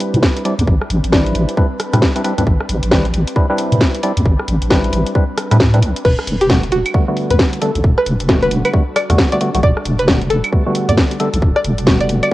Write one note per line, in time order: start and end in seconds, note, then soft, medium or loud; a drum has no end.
0.00 0.43 G3 loud
0.00 6.01 G3 medium
0.00 0.43 C4 medium
0.00 6.01 C4 medium
0.00 0.43 D4 medium
0.00 6.01 D4 medium
0.00 0.43 E4 medium
0.00 0.43 B4 loud
0.00 6.01 B4 medium
0.00 open hi-hat loud
0.14 0.21 A2 loud
0.14 closed hi-hat medium
0.23 kick loud
0.23 snare loud
0.37 closed hi-hat soft
0.45 0.54 G3 medium
0.45 0.54 C4 medium
0.45 0.54 D4 medium
0.45 0.54 E4 medium
0.45 0.54 D5 loud
0.45 open hi-hat medium
0.59 0.66 E2 medium
0.59 closed hi-hat medium
0.67 0.79 A1 loud
0.67 kick loud
0.81 cross-stick soft
0.90 1.02 A1 loud
0.90 open hi-hat loud
1.04 1.33 A1 medium
1.04 closed hi-hat medium
1.12 1.55 G3 medium
1.12 1.55 C4 medium
1.12 1.55 D4 medium
1.12 1.55 E4 medium
1.12 1.55 B4 loud
1.12 kick loud
1.12 snare loud
1.26 closed hi-hat soft
1.35 1.46 A1 loud
1.35 open hi-hat medium
1.49 closed hi-hat medium
1.57 1.66 G3 medium
1.57 1.66 C4 medium
1.57 1.66 D4 medium
1.57 1.66 E4 medium
1.57 1.66 B4 medium
1.57 kick loud
1.80 cross-stick medium
1.80 open hi-hat loud
1.93 2.01 A2 loud
1.93 2.12 G3 loud
1.93 2.12 C4 medium
1.93 2.12 D4 medium
1.93 2.12 E4 medium
1.93 2.12 B4 loud
1.93 cross-stick medium
1.93 closed hi-hat medium
2.02 kick loud
2.02 snare loud
2.16 2.22 G3 medium
2.16 2.22 C4 medium
2.16 2.22 D4 medium
2.16 2.22 E4 medium
2.16 2.22 B4 loud
2.16 closed hi-hat medium
2.24 2.33 G3 loud
2.24 2.33 C4 medium
2.24 2.33 D4 medium
2.24 2.33 E4 medium
2.24 2.33 B4 loud
2.24 open hi-hat medium
2.38 2.45 E2 medium
2.38 2.44 G3 medium
2.38 2.44 C4 medium
2.38 2.44 D4 medium
2.38 2.44 E4 medium
2.38 2.44 B4 medium
2.38 closed hi-hat medium
2.47 2.58 A1 loud
2.47 kick loud
2.60 cross-stick medium
2.69 2.81 A1 loud
2.69 open hi-hat loud
2.83 3.12 A1 medium
2.83 closed hi-hat medium
2.91 3.06 G3 medium
2.91 3.06 C4 medium
2.91 3.06 D4 medium
2.91 3.06 E4 medium
2.91 3.06 B4 loud
2.91 kick loud
2.91 snare loud
3.05 closed hi-hat soft
3.14 3.25 A1 loud
3.14 open hi-hat medium
3.28 closed hi-hat medium
3.36 3.47 G3 medium
3.36 3.47 C4 medium
3.36 3.47 D4 medium
3.36 3.47 E4 medium
3.36 3.47 B4 medium
3.36 kick loud
3.50 4.01 G3 loud
3.50 4.01 C4 medium
3.50 4.01 D4 medium
3.50 4.01 E4 medium
3.50 4.01 B4 loud
3.59 open hi-hat loud
3.72 3.80 A2 loud
3.72 closed hi-hat medium
3.81 kick loud
3.81 snare loud
3.95 closed hi-hat medium
4.03 4.13 G3 medium
4.03 4.13 C4 medium
4.03 4.13 D4 medium
4.03 4.13 E4 medium
4.03 4.13 D5 loud
4.03 open hi-hat loud
4.17 4.24 E2 medium
4.17 closed hi-hat medium
4.26 4.37 A1 loud
4.26 kick loud
4.40 cross-stick medium
4.48 4.60 A1 loud
4.48 open hi-hat loud
4.62 4.91 A1 medium
4.62 closed hi-hat medium
4.70 5.13 G3 medium
4.70 5.13 C4 medium
4.70 5.13 D4 medium
4.70 5.13 E4 medium
4.70 5.13 B4 loud
4.70 kick loud
4.70 snare loud
4.84 closed hi-hat soft
4.93 5.05 A1 loud
4.93 open hi-hat medium
5.07 closed hi-hat medium
5.15 5.25 G3 medium
5.15 5.25 C4 medium
5.15 5.25 D4 medium
5.15 5.25 E4 medium
5.15 5.25 B4 medium
5.15 kick loud
5.38 cross-stick medium
5.38 open hi-hat loud
5.51 5.84 A2 medium
5.51 5.57 G3 medium
5.51 5.57 C4 medium
5.51 5.57 D4 medium
5.51 5.57 E4 medium
5.51 5.57 B4 loud
5.51 cross-stick medium
5.51 closed hi-hat medium
5.60 kick loud
5.60 snare loud
5.74 5.80 G3 medium
5.74 5.80 C4 medium
5.74 5.80 D4 medium
5.74 5.80 E4 medium
5.74 5.80 B4 loud
5.74 closed hi-hat medium
5.82 5.94 C2 medium
5.82 open hi-hat medium
5.96 closed hi-hat medium
6.05 6.16 E1 loud
6.05 12.34 G3 medium
6.05 12.34 D4 medium
6.05 12.34 F#4 medium
6.05 12.34 A4 medium
6.05 6.25 B4 loud
6.05 kick loud
6.05 crash medium
6.19 cross-stick medium
6.27 6.39 E1 loud
6.27 open hi-hat loud
6.41 6.70 E1 medium
6.41 6.60 G4 medium
6.41 closed hi-hat medium
6.50 6.64 D3 medium
6.50 6.64 G3 medium
6.50 6.64 A3 medium
6.50 6.64 B3 medium
6.50 6.64 F#4 loud
6.50 kick loud
6.50 snare loud
6.63 closed hi-hat soft
6.72 6.84 E1 loud
6.72 6.87 F#4 medium
6.72 open hi-hat medium
6.86 closed hi-hat medium
6.86 claves medium
6.94 7.05 D3 medium
6.94 7.05 G3 medium
6.94 7.05 A3 medium
6.94 7.05 B3 medium
6.94 7.05 F#4 medium
6.94 kick loud
7.08 7.59 D3 loud
7.08 7.59 G3 medium
7.08 7.59 A3 medium
7.08 7.59 B3 medium
7.08 7.59 F#4 loud
7.17 open hi-hat loud
7.31 7.38 E2 loud
7.31 7.50 B4 medium
7.31 closed hi-hat medium
7.39 kick loud
7.39 snare loud
7.53 closed hi-hat soft
7.62 7.71 D3 medium
7.62 7.71 G3 medium
7.62 7.71 A3 medium
7.62 7.71 B3 medium
7.62 7.71 A4 loud
7.62 open hi-hat loud
7.75 7.83 B1 medium
7.75 closed hi-hat medium
7.84 7.96 E1 loud
7.84 kick loud
7.98 8.23 B4 medium
7.98 cross-stick medium
8.06 8.18 E1 loud
8.06 open hi-hat loud
8.20 8.49 E1 medium
8.20 closed hi-hat medium
8.29 8.71 D3 medium
8.29 8.71 G3 medium
8.29 8.71 A3 medium
8.29 8.71 B3 medium
8.29 8.71 F#4 loud
8.29 kick loud
8.29 snare loud
8.42 8.54 B4 medium
8.42 closed hi-hat soft
8.51 8.63 E1 loud
8.51 open hi-hat medium
8.65 8.84 B4 medium
8.65 closed hi-hat medium
8.65 claves medium
8.73 8.83 D3 medium
8.73 8.83 G3 medium
8.73 8.83 A3 medium
8.73 8.83 B3 medium
8.73 8.83 F#4 medium
8.73 kick loud
8.96 9.16 D5 medium
8.96 cross-stick medium
8.96 open hi-hat loud
8.96 claves medium
9.10 9.17 E2 loud
9.10 9.29 D3 medium
9.10 9.29 G3 medium
9.10 9.29 A3 medium
9.10 9.29 B3 medium
9.10 9.29 F#4 loud
9.10 cross-stick medium
9.10 closed hi-hat medium
9.18 kick loud
9.18 snare loud
9.32 9.39 D3 medium
9.32 9.39 G3 medium
9.32 9.39 A3 medium
9.32 9.39 B3 medium
9.32 9.39 F#4 loud
9.32 9.51 D5 medium
9.32 closed hi-hat soft
9.41 9.50 D3 loud
9.41 9.50 G3 medium
9.41 9.50 A3 medium
9.41 9.50 B3 medium
9.41 9.50 F#4 loud
9.41 open hi-hat medium
9.54 9.62 B1 medium
9.54 9.60 D3 medium
9.54 9.60 G3 medium
9.54 9.60 A3 medium
9.54 9.60 B3 medium
9.54 9.60 F#4 loud
9.54 closed hi-hat medium
9.63 9.75 E1 loud
9.63 9.84 D5 loud
9.63 kick loud
9.77 cross-stick medium
9.85 9.97 E1 loud
9.85 open hi-hat loud
9.99 10.28 E1 medium
9.99 10.19 B4 medium
9.99 closed hi-hat medium
10.08 10.22 D3 medium
10.08 10.22 G3 medium
10.08 10.22 A3 medium
10.08 10.22 B3 medium
10.08 10.22 F#4 loud
10.08 kick loud
10.08 snare loud
10.22 closed hi-hat soft
10.30 10.42 E1 loud
10.30 10.46 A4 medium
10.30 open hi-hat medium
10.44 closed hi-hat medium
10.44 claves medium
10.53 10.63 D3 medium
10.53 10.63 G3 medium
10.53 10.63 A3 medium
10.53 10.63 B3 medium
10.53 10.63 F#4 medium
10.53 kick loud
10.66 11.18 D3 loud
10.66 11.18 G3 medium
10.66 11.18 A3 medium
10.66 11.18 B3 medium
10.66 11.18 F#4 loud
10.75 open hi-hat loud
10.89 10.96 E2 loud
10.89 11.08 D5 medium
10.89 closed hi-hat medium
10.97 kick loud
10.97 snare loud
11.11 closed hi-hat soft
11.20 11.29 D3 medium
11.20 11.29 G3 medium
11.20 11.29 A3 medium
11.20 11.29 B3 medium
11.20 11.29 A4 loud
11.20 open hi-hat medium
11.33 11.41 B1 medium
11.33 closed hi-hat medium
11.42 11.54 E1 loud
11.42 kick loud
11.56 11.82 D5 medium
11.56 cross-stick medium
11.64 11.76 E1 loud
11.64 open hi-hat loud
11.78 12.07 E1 medium
11.78 closed hi-hat medium
11.87 12.30 D3 medium
11.87 12.30 G3 medium
11.87 12.30 A3 medium
11.87 12.30 B3 medium
11.87 12.30 F#4 loud
11.87 kick loud
11.87 snare loud
12.01 12.12 D5 medium
12.01 closed hi-hat soft
12.09 12.21 E1 loud
12.09 open hi-hat medium
12.23 12.34 D5 medium
12.23 closed hi-hat medium
12.23 claves medium